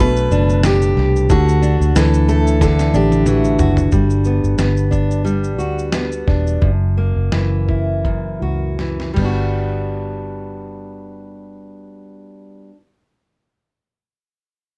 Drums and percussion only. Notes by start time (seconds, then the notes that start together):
0.16 shaker
0.31 shaker
0.49 shaker
0.63 snare, shaker
0.82 shaker
0.97 snare
1.16 shaker
1.30 kick, shaker
1.49 shaker
1.63 shaker
1.82 shaker
1.96 snare, shaker
2.14 shaker
2.28 shaker
2.47 shaker
2.61 kick, snare, shaker
2.79 snare, shaker
2.94 shaker
3.12 high tom, shaker
3.26 mid tom, shaker
3.44 shaker
3.59 floor tom, shaker
3.77 floor tom, shaker
3.92 kick, shaker
4.10 shaker
4.24 shaker
4.44 shaker
4.58 snare, shaker
4.77 shaker
4.92 kick, shaker
5.11 shaker
5.26 shaker
5.44 shaker
5.59 shaker
5.79 shaker
5.92 snare, shaker
6.12 shaker
6.28 kick, snare
6.47 shaker
6.62 kick
7.32 snare
7.69 kick
8.05 kick
8.79 snare
9.00 snare
9.16 kick, crash